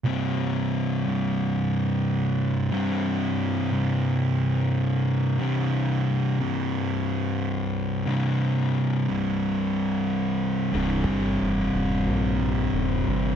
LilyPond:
<<
  \new Staff \with { instrumentName = "Synth drone" } { \clef bass \time 4/4 \key des \lydian \tempo 4 = 90 r1 | r1 | r1 | r1 |
<c g c'>1 | }
  \new Staff \with { instrumentName = "Distorted electric guitar" } { \clef bass \time 4/4 \key des \lydian <c, g, c>1 | <c, g, c>1 | <c, g, c>1 | <c, g, c>1 |
<c, g, c>1 | }
  \new Staff \with { instrumentName = "Distorted electric guitar" } { \clef bass \time 4/4 \key des \lydian <c, g, c>4. <c, g, c>2~ <c, g, c>8 | <c, g, c>4. <c, g, c>2~ <c, g, c>8 | <c, g, c>4. <c, g, c>2~ <c, g, c>8 | <c, g, c>4. <c, g, c>2~ <c, g, c>8 |
<c, g, c>1 | }
  \new Staff \with { instrumentName = "Fingered electric bass" } { \clef bass \time 4/4 \key des \lydian r1 | r1 | r1 | r1 |
c,,8 g,,8 f,,8 ees,,8 bes,,4 ees,,8 g,,8 | }
>>